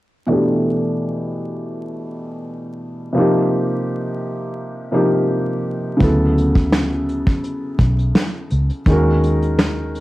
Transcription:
0.26 3.10 B2 medium
0.26 3.10 E3 medium
0.26 3.11 A3 medium
0.31 3.12 D4 medium
0.31 3.13 G4 medium
3.13 4.89 C3 medium
3.13 4.90 F3 medium
3.13 4.91 A#3 medium
3.18 4.91 D#4 medium
3.18 4.92 G4 medium
4.92 6.00 C3 medium
4.92 6.00 F3 medium
4.92 6.01 A#3 medium
4.92 6.01 D#4 soft
4.92 6.01 G4 medium
5.97 8.81 C#3 medium
5.97 8.81 F#3 medium
5.97 8.82 B3 medium
5.97 kick medium
5.97 closed hi-hat medium
6.01 7.24 D2 medium
6.01 8.83 E4 medium
6.01 8.84 A4 medium
6.38 closed hi-hat medium
6.55 kick medium
6.55 closed hi-hat soft
6.72 snare medium
6.72 closed hi-hat medium
7.09 closed hi-hat medium
7.27 kick medium
7.27 closed hi-hat soft
7.44 closed hi-hat medium
7.79 8.11 B1 medium
7.79 kick medium
7.79 closed hi-hat medium
7.99 closed hi-hat soft
8.15 snare medium
8.15 closed hi-hat medium
8.50 8.69 C#2 medium
8.50 closed hi-hat medium
8.70 closed hi-hat soft
8.86 10.00 D#2 medium
8.86 10.00 D#3 medium
8.86 10.00 G#3 medium
8.86 10.00 C#4 medium
8.86 kick medium
8.86 closed hi-hat medium
8.92 10.00 F#4 medium
8.92 10.00 A#4 medium
9.24 closed hi-hat medium
9.42 closed hi-hat soft
9.59 snare medium
9.59 closed hi-hat medium
9.95 closed hi-hat medium

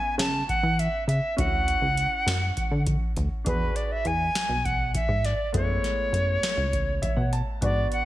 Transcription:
0.00 1.34 B3 medium
0.00 1.34 C#4 medium
0.00 1.35 F#4 medium
0.00 0.18 G#5 medium
0.18 0.43 C#3 loud
0.18 0.47 A5 medium
0.18 snare loud
0.18 closed hi-hat medium
0.49 0.81 F#5 loud
0.49 kick medium
0.49 closed hi-hat medium
0.63 0.88 E3 medium
0.79 1.07 E5 loud
0.79 closed hi-hat medium
1.07 1.20 C#3 loud
1.07 1.35 E5 medium
1.07 closed hi-hat medium
1.37 1.75 D2 medium
1.37 3.41 C#4 medium
1.37 3.42 E4 medium
1.37 3.42 F#4 medium
1.37 2.83 F#5 loud
1.37 kick loud
1.37 closed hi-hat medium
1.68 closed hi-hat medium
1.82 2.07 C#2 medium
1.98 closed hi-hat medium
2.26 2.51 F#2 loud
2.26 snare loud
2.26 closed hi-hat medium
2.57 kick medium
2.57 closed hi-hat medium
2.71 2.96 D3 medium
2.87 kick loud
2.87 closed hi-hat medium
3.17 3.29 D2 loud
3.17 kick medium
3.17 closed hi-hat medium
3.44 3.71 E2 loud
3.44 5.49 D4 medium
3.44 5.50 F#4 soft
3.44 5.50 G#4 medium
3.44 3.77 B4 medium
3.44 kick loud
3.44 closed hi-hat medium
3.76 3.93 D5 medium
3.76 closed hi-hat medium
3.92 4.08 E5 medium
4.05 4.30 E2 medium
4.05 4.67 G#5 medium
4.05 closed hi-hat medium
4.35 snare loud
4.35 closed hi-hat medium
4.49 4.98 B1 medium
4.65 4.95 F#5 medium
4.65 kick medium
4.65 closed hi-hat medium
4.95 5.27 E5 medium
4.95 kick medium
4.95 closed hi-hat medium
5.08 5.33 G#2 medium
5.25 5.54 D5 medium
5.25 snare soft
5.25 closed hi-hat medium
5.52 5.79 F#2 medium
5.52 7.58 G#3 medium
5.52 7.57 A3 medium
5.52 7.58 B3 medium
5.52 7.58 E4 medium
5.52 7.29 C#5 medium
5.52 kick medium
5.52 closed hi-hat medium
5.84 snare soft
5.84 closed hi-hat medium
6.12 6.37 F#2 medium
6.12 closed hi-hat medium
6.43 snare medium
6.43 closed hi-hat medium
6.57 7.07 C#2 medium
6.73 kick medium
6.73 closed hi-hat medium
7.02 7.16 E5 medium
7.02 kick medium
7.02 closed hi-hat medium
7.16 7.42 B2 medium
7.16 7.31 F#5 medium
7.33 7.60 A5 medium
7.33 closed hi-hat medium
7.61 7.87 G#2 loud
7.61 8.05 B3 medium
7.61 8.05 D4 medium
7.61 8.05 F#4 medium
7.61 7.90 D5 medium
7.61 kick loud
7.61 closed hi-hat medium
7.92 8.05 F#5 medium
7.92 closed hi-hat medium

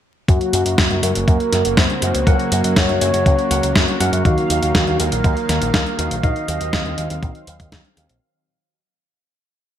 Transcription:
0.28 0.37 F#2 medium
0.28 4.21 C#3 medium
0.28 8.18 F#3 medium
0.28 6.20 A#3 medium
0.28 4.21 F#4 medium
0.28 1.05 F#4 loud
0.28 kick loud
0.28 closed hi-hat medium
0.41 closed hi-hat soft
0.53 0.62 F#2 medium
0.53 closed hi-hat medium
0.66 0.75 F#2 medium
0.66 closed hi-hat medium
0.78 0.87 F#2 loud
0.78 kick loud
0.78 snare loud
0.78 closed hi-hat medium
0.91 0.99 F#2 medium
0.91 closed hi-hat soft
1.03 1.12 F#2 medium
1.03 1.27 A#4 medium
1.03 closed hi-hat medium
1.15 1.24 F#1 medium
1.15 closed hi-hat medium
1.28 1.37 F#2 loud
1.28 1.79 A#4 loud
1.28 kick loud
1.28 closed hi-hat soft
1.40 closed hi-hat soft
1.53 1.62 F#2 medium
1.53 snare soft
1.53 closed hi-hat medium
1.65 1.74 F#1 medium
1.65 closed hi-hat medium
1.77 1.86 F#2 loud
1.77 2.28 C5 loud
1.77 kick loud
1.77 snare loud
1.77 closed hi-hat medium
1.90 closed hi-hat soft
2.02 2.11 F#2 medium
2.02 closed hi-hat medium
2.15 2.23 C#2 medium
2.15 closed hi-hat medium
2.27 2.36 C#2 loud
2.27 3.48 F#3 medium
2.27 3.48 C#4 medium
2.27 3.48 F#4 medium
2.27 2.78 A#4 loud
2.27 3.48 A#4 medium
2.27 3.48 F#5 loud
2.27 kick loud
2.27 closed hi-hat medium
2.39 closed hi-hat soft
2.52 2.61 F#2 medium
2.52 closed hi-hat medium
2.64 2.73 F#2 medium
2.64 closed hi-hat soft
2.76 2.85 F#2 loud
2.76 3.01 C#5 loud
2.76 kick loud
2.76 snare loud
2.76 closed hi-hat medium
2.89 2.98 F#2 medium
2.89 closed hi-hat soft
3.01 3.10 F#2 medium
3.01 3.96 C#5 loud
3.01 closed hi-hat medium
3.14 3.23 F#2 medium
3.14 closed hi-hat medium
3.26 3.35 C#2 loud
3.26 kick loud
3.26 closed hi-hat medium
3.39 closed hi-hat soft
3.51 3.60 C#2 medium
3.51 3.97 F#3 medium
3.51 3.97 C#4 medium
3.51 3.97 F#4 medium
3.51 3.97 A#4 medium
3.51 3.97 F#5 medium
3.51 closed hi-hat medium
3.63 3.72 C#2 medium
3.63 closed hi-hat medium
3.76 3.85 F#2 loud
3.76 kick loud
3.76 snare loud
3.76 closed hi-hat medium
3.88 closed hi-hat soft
4.00 4.09 F#2 medium
4.00 4.22 C#4 medium
4.00 4.22 F#4 medium
4.00 4.22 A#4 medium
4.00 4.22 F#5 loud
4.00 closed hi-hat medium
4.13 4.22 F#2 medium
4.13 closed hi-hat medium
4.25 4.34 D#2 loud
4.25 5.96 D#3 medium
4.25 8.18 D#3 medium
4.25 5.96 D#4 medium
4.25 5.96 F#4 medium
4.25 5.01 F#4 loud
4.25 5.96 A#4 medium
4.25 5.96 F5 medium
4.25 8.18 F5 medium
4.25 kick loud
4.25 closed hi-hat soft
4.38 closed hi-hat soft
4.50 4.59 D#2 medium
4.50 closed hi-hat medium
4.62 4.71 D#2 medium
4.62 closed hi-hat soft
4.75 4.84 D#2 loud
4.75 kick loud
4.75 snare loud
4.75 closed hi-hat medium
4.87 4.96 D#2 medium
4.87 closed hi-hat soft
5.00 5.09 D#2 medium
5.00 5.49 A#4 loud
5.00 closed hi-hat medium
5.12 5.21 A#1 medium
5.12 closed hi-hat soft
5.24 5.33 D#2 loud
5.24 kick loud
5.24 closed hi-hat soft
5.37 closed hi-hat soft
5.49 5.58 D#2 medium
5.49 5.95 A#4 loud
5.49 snare soft
5.49 closed hi-hat medium
5.61 5.70 A#1 medium
5.61 closed hi-hat soft
5.74 5.83 D#2 loud
5.74 kick loud
5.74 snare loud
5.74 closed hi-hat medium
5.86 closed hi-hat soft
5.99 6.08 D#2 medium
5.99 6.15 D#3 medium
5.99 6.15 D#4 medium
5.99 6.15 F#4 medium
5.99 6.15 A#4 medium
5.99 6.15 F5 medium
5.99 closed hi-hat medium
6.11 6.20 A#1 medium
6.11 closed hi-hat soft
6.23 6.32 A#1 loud
6.23 7.45 D#3 loud
6.23 8.20 C4 medium
6.23 7.45 D#4 medium
6.23 7.45 F#4 medium
6.23 7.45 A#4 medium
6.23 7.68 D#5 loud
6.23 7.45 F5 loud
6.23 kick loud
6.23 closed hi-hat soft
6.36 closed hi-hat soft
6.48 6.57 D#2 loud
6.48 closed hi-hat medium
6.61 6.70 D#2 medium
6.61 closed hi-hat soft
6.73 6.82 D#2 loud
6.73 kick loud
6.73 snare loud
6.73 closed hi-hat medium
6.86 6.94 D#2 medium
6.86 closed hi-hat soft
6.98 7.07 D#2 medium
6.98 closed hi-hat medium
7.10 7.19 D#2 medium
7.10 closed hi-hat soft
7.23 7.32 A#1 loud
7.23 kick loud
7.23 closed hi-hat soft
7.35 closed hi-hat soft
7.47 7.56 D#2 medium
7.47 closed hi-hat medium
7.60 7.69 D#2 medium
7.60 kick medium
7.60 closed hi-hat soft
7.72 7.81 D#2 loud
7.72 kick loud
7.72 snare loud
7.72 closed hi-hat soft
7.85 closed hi-hat soft
7.97 8.06 D#2 medium
7.97 closed hi-hat medium
8.09 8.18 A#1 medium
8.09 closed hi-hat medium

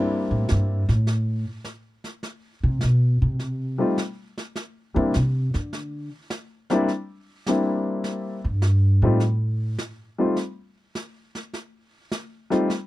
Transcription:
0.00 0.81 G3 soft
0.00 0.81 A#3 soft
0.00 0.81 C4 soft
0.00 0.82 D4 soft
0.00 0.82 E4 medium
0.31 0.49 A2 medium
0.49 0.88 G2 medium
0.49 snare medium
0.89 1.43 A2 medium
0.89 snare soft
1.07 brush sweep soft
1.07 snare soft
1.64 snare medium
2.04 snare soft
2.23 brush sweep soft
2.23 snare soft
2.63 2.81 C3 medium
2.81 3.21 B2 medium
2.81 snare medium
3.22 3.76 C3 medium
3.39 brush sweep medium
3.39 snare soft
3.78 3.95 G3 medium
3.78 3.96 A3 soft
3.78 3.96 C4 soft
3.78 3.96 D#4 soft
3.78 3.97 F4 medium
3.98 snare medium
4.38 snare soft
4.56 brush sweep soft
4.56 snare soft
4.94 5.14 D3 medium
4.94 5.12 G3 soft
4.94 5.12 A#3 soft
4.94 5.12 C4 soft
4.94 5.12 D4 soft
4.94 5.13 E4 medium
5.14 5.54 C3 medium
5.14 snare medium
5.54 6.08 D3 medium
5.54 snare soft
5.73 brush sweep soft
5.73 snare soft
6.30 snare medium
6.70 6.87 G3 medium
6.70 6.87 A#3 medium
6.70 6.87 C4 medium
6.70 6.88 D4 medium
6.70 6.88 E4 medium
6.70 snare soft
6.88 brush sweep soft
6.88 snare soft
7.46 8.37 G3 medium
7.46 8.37 A#3 soft
7.46 8.38 C4 soft
7.46 8.38 D4 soft
7.46 8.38 E4 medium
7.46 snare medium
8.04 brush sweep soft
8.04 snare soft
8.44 8.99 G2 medium
8.62 snare medium
9.02 9.75 A2 medium
9.02 9.19 G3 medium
9.02 9.19 A3 soft
9.02 9.20 C4 medium
9.02 9.20 D#4 medium
9.02 9.20 F4 medium
9.20 brush sweep soft
9.20 snare soft
9.78 snare medium
10.18 10.35 G3 medium
10.18 10.35 A3 soft
10.18 10.36 C4 soft
10.18 10.36 D#4 soft
10.18 10.36 F4 medium
10.36 brush sweep soft
10.36 snare soft
10.95 snare medium
11.35 snare soft
11.53 brush sweep soft
11.53 snare soft
12.12 snare medium
12.50 12.67 G3 medium
12.50 12.67 A3 medium
12.50 12.68 C4 medium
12.50 12.68 D#4 medium
12.50 12.68 F4 medium
12.50 snare soft
12.70 brush sweep soft
12.70 snare soft

